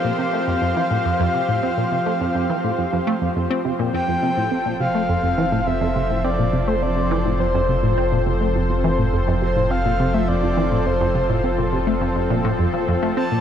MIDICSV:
0, 0, Header, 1, 6, 480
1, 0, Start_track
1, 0, Key_signature, -1, "major"
1, 0, Tempo, 576923
1, 1355, Time_signature, 4, 2, 24, 8
1, 11154, End_track
2, 0, Start_track
2, 0, Title_t, "Soft synth lead"
2, 0, Program_c, 0, 80
2, 0, Note_on_c, 0, 77, 99
2, 149, Note_off_c, 0, 77, 0
2, 154, Note_on_c, 0, 77, 111
2, 2761, Note_off_c, 0, 77, 0
2, 3276, Note_on_c, 0, 79, 119
2, 3962, Note_off_c, 0, 79, 0
2, 3995, Note_on_c, 0, 77, 105
2, 4716, Note_on_c, 0, 76, 103
2, 4729, Note_off_c, 0, 77, 0
2, 5195, Note_on_c, 0, 74, 98
2, 5207, Note_off_c, 0, 76, 0
2, 5557, Note_on_c, 0, 72, 84
2, 5569, Note_off_c, 0, 74, 0
2, 5675, Note_on_c, 0, 74, 90
2, 5688, Note_off_c, 0, 72, 0
2, 6151, Note_off_c, 0, 74, 0
2, 6156, Note_on_c, 0, 72, 83
2, 6842, Note_off_c, 0, 72, 0
2, 7835, Note_on_c, 0, 72, 97
2, 8074, Note_on_c, 0, 77, 110
2, 8087, Note_off_c, 0, 72, 0
2, 8434, Note_on_c, 0, 76, 94
2, 8447, Note_off_c, 0, 77, 0
2, 8555, Note_on_c, 0, 74, 103
2, 8567, Note_off_c, 0, 76, 0
2, 9034, Note_on_c, 0, 72, 90
2, 9046, Note_off_c, 0, 74, 0
2, 9515, Note_off_c, 0, 72, 0
2, 10954, Note_on_c, 0, 81, 117
2, 11154, Note_off_c, 0, 81, 0
2, 11154, End_track
3, 0, Start_track
3, 0, Title_t, "Analog synth pad"
3, 0, Program_c, 1, 89
3, 0, Note_on_c, 1, 53, 77
3, 0, Note_on_c, 1, 60, 74
3, 0, Note_on_c, 1, 67, 70
3, 0, Note_on_c, 1, 72, 86
3, 3242, Note_off_c, 1, 53, 0
3, 3242, Note_off_c, 1, 60, 0
3, 3242, Note_off_c, 1, 67, 0
3, 3265, Note_off_c, 1, 72, 0
3, 3276, Note_on_c, 1, 60, 73
3, 3277, Note_on_c, 1, 53, 78
3, 3277, Note_on_c, 1, 69, 73
3, 3277, Note_on_c, 1, 72, 92
3, 10947, Note_off_c, 1, 72, 0
3, 10954, Note_on_c, 1, 74, 88
3, 11154, Note_off_c, 1, 53, 0
3, 11154, Note_off_c, 1, 60, 0
3, 11154, Note_off_c, 1, 69, 0
3, 11154, Note_off_c, 1, 74, 0
3, 11154, End_track
4, 0, Start_track
4, 0, Title_t, "Synth texture"
4, 0, Program_c, 2, 99
4, 3277, Note_on_c, 2, 65, 82
4, 11154, Note_off_c, 2, 65, 0
4, 11154, End_track
5, 0, Start_track
5, 0, Title_t, "Synth arpeggio sound"
5, 0, Program_c, 3, 84
5, 35, Note_on_c, 3, 46, 71
5, 94, Note_off_c, 3, 46, 0
5, 154, Note_on_c, 3, 48, 75
5, 213, Note_off_c, 3, 48, 0
5, 275, Note_on_c, 3, 57, 74
5, 334, Note_off_c, 3, 57, 0
5, 394, Note_on_c, 3, 41, 81
5, 453, Note_off_c, 3, 41, 0
5, 514, Note_on_c, 3, 41, 72
5, 603, Note_off_c, 3, 41, 0
5, 635, Note_on_c, 3, 52, 98
5, 694, Note_off_c, 3, 52, 0
5, 754, Note_on_c, 3, 45, 75
5, 813, Note_off_c, 3, 45, 0
5, 876, Note_on_c, 3, 41, 78
5, 934, Note_off_c, 3, 41, 0
5, 996, Note_on_c, 3, 41, 100
5, 1055, Note_off_c, 3, 41, 0
5, 1117, Note_on_c, 3, 48, 71
5, 1175, Note_off_c, 3, 48, 0
5, 1236, Note_on_c, 3, 45, 71
5, 1324, Note_off_c, 3, 45, 0
5, 1356, Note_on_c, 3, 60, 79
5, 1414, Note_off_c, 3, 60, 0
5, 1476, Note_on_c, 3, 46, 72
5, 1535, Note_off_c, 3, 46, 0
5, 1596, Note_on_c, 3, 48, 74
5, 1654, Note_off_c, 3, 48, 0
5, 1716, Note_on_c, 3, 57, 76
5, 1775, Note_off_c, 3, 57, 0
5, 1836, Note_on_c, 3, 41, 77
5, 1894, Note_off_c, 3, 41, 0
5, 1957, Note_on_c, 3, 41, 74
5, 2044, Note_off_c, 3, 41, 0
5, 2077, Note_on_c, 3, 52, 99
5, 2135, Note_off_c, 3, 52, 0
5, 2197, Note_on_c, 3, 45, 75
5, 2255, Note_off_c, 3, 45, 0
5, 2316, Note_on_c, 3, 41, 85
5, 2374, Note_off_c, 3, 41, 0
5, 2436, Note_on_c, 3, 41, 95
5, 2494, Note_off_c, 3, 41, 0
5, 2555, Note_on_c, 3, 57, 99
5, 2614, Note_off_c, 3, 57, 0
5, 2677, Note_on_c, 3, 41, 76
5, 2735, Note_off_c, 3, 41, 0
5, 2796, Note_on_c, 3, 41, 77
5, 2884, Note_off_c, 3, 41, 0
5, 2916, Note_on_c, 3, 60, 97
5, 3004, Note_off_c, 3, 60, 0
5, 3037, Note_on_c, 3, 48, 98
5, 3095, Note_off_c, 3, 48, 0
5, 3156, Note_on_c, 3, 46, 98
5, 3244, Note_off_c, 3, 46, 0
5, 3275, Note_on_c, 3, 41, 81
5, 3334, Note_off_c, 3, 41, 0
5, 3395, Note_on_c, 3, 41, 99
5, 3454, Note_off_c, 3, 41, 0
5, 3515, Note_on_c, 3, 48, 77
5, 3574, Note_off_c, 3, 48, 0
5, 3636, Note_on_c, 3, 45, 71
5, 3724, Note_off_c, 3, 45, 0
5, 3757, Note_on_c, 3, 60, 80
5, 3815, Note_off_c, 3, 60, 0
5, 3876, Note_on_c, 3, 46, 69
5, 3935, Note_off_c, 3, 46, 0
5, 3996, Note_on_c, 3, 48, 74
5, 4055, Note_off_c, 3, 48, 0
5, 4116, Note_on_c, 3, 57, 75
5, 4174, Note_off_c, 3, 57, 0
5, 4235, Note_on_c, 3, 41, 81
5, 4294, Note_off_c, 3, 41, 0
5, 4354, Note_on_c, 3, 41, 74
5, 4443, Note_off_c, 3, 41, 0
5, 4474, Note_on_c, 3, 52, 100
5, 4534, Note_off_c, 3, 52, 0
5, 4595, Note_on_c, 3, 45, 74
5, 4654, Note_off_c, 3, 45, 0
5, 4715, Note_on_c, 3, 41, 80
5, 4774, Note_off_c, 3, 41, 0
5, 4836, Note_on_c, 3, 41, 100
5, 4895, Note_off_c, 3, 41, 0
5, 4956, Note_on_c, 3, 48, 74
5, 5015, Note_off_c, 3, 48, 0
5, 5077, Note_on_c, 3, 45, 76
5, 5164, Note_off_c, 3, 45, 0
5, 5196, Note_on_c, 3, 60, 76
5, 5254, Note_off_c, 3, 60, 0
5, 5315, Note_on_c, 3, 46, 72
5, 5374, Note_off_c, 3, 46, 0
5, 5435, Note_on_c, 3, 48, 78
5, 5494, Note_off_c, 3, 48, 0
5, 5556, Note_on_c, 3, 57, 76
5, 5614, Note_off_c, 3, 57, 0
5, 5675, Note_on_c, 3, 41, 77
5, 5734, Note_off_c, 3, 41, 0
5, 5795, Note_on_c, 3, 41, 74
5, 5883, Note_off_c, 3, 41, 0
5, 5915, Note_on_c, 3, 52, 99
5, 5974, Note_off_c, 3, 52, 0
5, 6035, Note_on_c, 3, 45, 77
5, 6094, Note_off_c, 3, 45, 0
5, 6155, Note_on_c, 3, 41, 85
5, 6214, Note_off_c, 3, 41, 0
5, 6276, Note_on_c, 3, 41, 97
5, 6334, Note_off_c, 3, 41, 0
5, 6396, Note_on_c, 3, 48, 75
5, 6454, Note_off_c, 3, 48, 0
5, 6517, Note_on_c, 3, 45, 76
5, 6604, Note_off_c, 3, 45, 0
5, 6636, Note_on_c, 3, 60, 80
5, 6695, Note_off_c, 3, 60, 0
5, 6757, Note_on_c, 3, 46, 76
5, 6815, Note_off_c, 3, 46, 0
5, 6877, Note_on_c, 3, 48, 70
5, 6935, Note_off_c, 3, 48, 0
5, 6997, Note_on_c, 3, 57, 73
5, 7055, Note_off_c, 3, 57, 0
5, 7117, Note_on_c, 3, 41, 79
5, 7175, Note_off_c, 3, 41, 0
5, 7237, Note_on_c, 3, 41, 75
5, 7324, Note_off_c, 3, 41, 0
5, 7356, Note_on_c, 3, 52, 106
5, 7415, Note_off_c, 3, 52, 0
5, 7477, Note_on_c, 3, 45, 78
5, 7535, Note_off_c, 3, 45, 0
5, 7597, Note_on_c, 3, 41, 79
5, 7655, Note_off_c, 3, 41, 0
5, 7717, Note_on_c, 3, 41, 96
5, 7775, Note_off_c, 3, 41, 0
5, 7837, Note_on_c, 3, 48, 74
5, 7895, Note_off_c, 3, 48, 0
5, 7957, Note_on_c, 3, 45, 73
5, 8044, Note_off_c, 3, 45, 0
5, 8077, Note_on_c, 3, 60, 84
5, 8135, Note_off_c, 3, 60, 0
5, 8197, Note_on_c, 3, 46, 76
5, 8255, Note_off_c, 3, 46, 0
5, 8317, Note_on_c, 3, 48, 78
5, 8375, Note_off_c, 3, 48, 0
5, 8437, Note_on_c, 3, 57, 71
5, 8495, Note_off_c, 3, 57, 0
5, 8556, Note_on_c, 3, 41, 77
5, 8614, Note_off_c, 3, 41, 0
5, 8677, Note_on_c, 3, 41, 76
5, 8764, Note_off_c, 3, 41, 0
5, 8796, Note_on_c, 3, 52, 98
5, 8855, Note_off_c, 3, 52, 0
5, 8918, Note_on_c, 3, 45, 70
5, 8975, Note_off_c, 3, 45, 0
5, 9038, Note_on_c, 3, 41, 81
5, 9095, Note_off_c, 3, 41, 0
5, 9157, Note_on_c, 3, 41, 98
5, 9215, Note_off_c, 3, 41, 0
5, 9277, Note_on_c, 3, 48, 75
5, 9335, Note_off_c, 3, 48, 0
5, 9397, Note_on_c, 3, 45, 73
5, 9484, Note_off_c, 3, 45, 0
5, 9517, Note_on_c, 3, 60, 78
5, 9575, Note_off_c, 3, 60, 0
5, 9637, Note_on_c, 3, 46, 73
5, 9695, Note_off_c, 3, 46, 0
5, 9755, Note_on_c, 3, 48, 73
5, 9814, Note_off_c, 3, 48, 0
5, 9876, Note_on_c, 3, 57, 75
5, 9934, Note_off_c, 3, 57, 0
5, 9995, Note_on_c, 3, 41, 81
5, 10054, Note_off_c, 3, 41, 0
5, 10115, Note_on_c, 3, 41, 74
5, 10203, Note_off_c, 3, 41, 0
5, 10236, Note_on_c, 3, 46, 100
5, 10324, Note_off_c, 3, 46, 0
5, 10356, Note_on_c, 3, 45, 95
5, 10414, Note_off_c, 3, 45, 0
5, 10476, Note_on_c, 3, 41, 80
5, 10534, Note_off_c, 3, 41, 0
5, 10596, Note_on_c, 3, 53, 79
5, 10684, Note_off_c, 3, 53, 0
5, 10717, Note_on_c, 3, 41, 70
5, 10775, Note_off_c, 3, 41, 0
5, 10837, Note_on_c, 3, 57, 98
5, 10924, Note_off_c, 3, 57, 0
5, 10957, Note_on_c, 3, 60, 77
5, 11015, Note_off_c, 3, 60, 0
5, 11077, Note_on_c, 3, 46, 77
5, 11135, Note_off_c, 3, 46, 0
5, 11154, End_track
6, 0, Start_track
6, 0, Title_t, "Analog synth bass"
6, 0, Program_c, 4, 38
6, 3275, Note_on_c, 4, 29, 83
6, 10931, Note_off_c, 4, 29, 0
6, 10954, Note_on_c, 4, 29, 87
6, 11154, Note_off_c, 4, 29, 0
6, 11154, End_track
0, 0, End_of_file